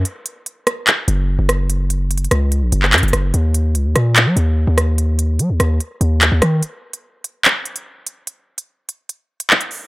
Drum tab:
HH |x-----------x-----------x-----------x-----------x-----------x-----------------------x-----------|x-----------x-----------x---x---x---x-----------x-----------x-----------x--x--x--x--x-----------|x-----------x-----------x-----------x-----------x-----------x-----------------------x-----------|x-----------x-----------x-----------x-----------x-----------x-----------x-----------x-----------|
CP |------------------------------------------------x-----------------------------------------------|------------------------------------------------------------------x-----x-----------------------|------------------------------------------------x-----------------------------------------------|------------------------------------------------------------------------x-----------------------|
SD |------------------------------------r-----------------------------------------------r-----------|------------------------------------r-----------------------------------------------r-----------|------------------------------------r-----------------------------------------------r-----------|------------------------------------r-----------------------------------------------r-----------|

HH |x-----------------x-----------------x-----------x-----------x-----x-----------------x-----------|x-----------------x-----------------x-----------x-----------------x-----------x-----o-----------|
CP |------------------------------------------------x-----------------------------------------------|------------------------------------------------------------------------x-----------------------|
SD |------------------------------------------------------------------------------------------------|------------------------------------------------------------------------------------------------|